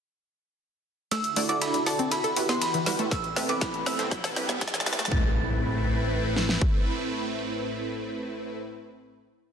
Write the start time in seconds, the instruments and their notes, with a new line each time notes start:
1.11 supersaw synth D3 D4 E4 F#4 A4, synth arpeggio sound A3, synth bell E6, snare, closed hi-hat, ride, riser
1.24 closed hi-hat
1.36 analog synth bass D2, synth arpeggio sound A3, synth pluck E4 F#4 A4 D5, open hi-hat, ride
1.49 analog synth bass D2, synth pluck E4 F#4 A4 D5, synth bell D6, closed hi-hat, ride
1.61 synth arpeggio sound E4, synth bell B5, snare, closed hi-hat, ride
1.74 analog synth bass D2, snare, closed hi-hat
1.86 synth pluck E4 F#4 A4 D5, synth bell A5, snare, open hi-hat, ride
1.99 analog synth bass D1, synth arpeggio sound C4, closed hi-hat
2.11 supersaw synth E3 G4 B4, synth arpeggio sound E4, synth bell B5, snare, closed hi-hat, ride
2.24 synth arpeggio sound A4, closed hi-hat
2.36 analog synth bass E2, synth pluck E4 F#4 G4 B4, open hi-hat, ride
2.49 analog synth bass E2, synth arpeggio sound B3, synth bell C6, snare, closed hi-hat
2.62 synth bell B5, snare, closed hi-hat, ride
2.74 analog synth bass E2, synth arpeggio sound E3, closed hi-hat
2.86 synth arpeggio sound G3, synth pluck E4 F#4 G4 B4, snare, open hi-hat, ride
2.99 analog synth bass E2, synth arpeggio sound A3, closed hi-hat
3.11 supersaw synth C3 A3 B3, synth arpeggio sound A3, synth bell E6, kick, snare, closed hi-hat, ride
3.24 closed hi-hat
3.36 analog synth bass A1, synth arpeggio sound A3, synth pluck C4 E4 A4 B4, snare, open hi-hat, ride
3.49 analog synth bass A1, synth pluck C4 E4 A4 B4, synth bell D6, closed hi-hat, ride
3.61 synth arpeggio sound E4, synth bell B5, kick, snare, closed hi-hat, ride
3.74 analog synth bass A1, closed hi-hat
3.86 synth pluck C4 E4 A4 B4, synth bell E6, snare, open hi-hat, ride
3.99 analog synth bass A2, synth arpeggio sound C4, snare, closed hi-hat
4.11 supersaw synth G3 D4 E4, synth arpeggio sound E4, kick, snare, closed hi-hat, ride
4.24 synth arpeggio sound A4, snare, open hi-hat
4.36 analog synth bass C2, synth pluck C4 E4 G4 B4, snare, open hi-hat, ride
4.49 analog synth bass C2, synth arpeggio sound B3, snare, closed hi-hat
4.61 kick, snare, closed hi-hat, ride
4.68 snare
4.74 analog synth bass C2, synth arpeggio sound E3, snare, closed hi-hat
4.80 snare
4.86 synth arpeggio sound G3, synth pluck C4 E4 G4 B4, snare, open hi-hat, ride
4.93 snare
4.99 analog synth bass C2, synth arpeggio sound A3, snare, closed hi-hat
5.05 snare
5.11 analog synth bass A1, supersaw synth A2 A3 C4 E4 B4, synth arpeggio sound A3, synth pluck C4 E4 A4 B4, synth bell A6, kick, impact
6.36 snare
6.49 snare
6.61 kick